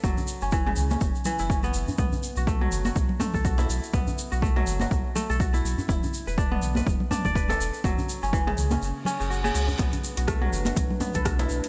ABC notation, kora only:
X:1
M:4/4
L:1/16
Q:"Swing 16ths" 1/4=123
K:Bm
V:1 name="Kora"
F, z2 C E, C, z C z2 E, E C B, z2 | B, z2 F A, F, z F z2 A, A F E z2 | B, z2 F A, F, z F z2 A, A F E z2 | E z2 B D B, z B z2 D d B A z2 |
F, z2 C E, C, z C z2 C C, F C, F z | B, z2 F A, F, z F z2 B, A F E z2 |]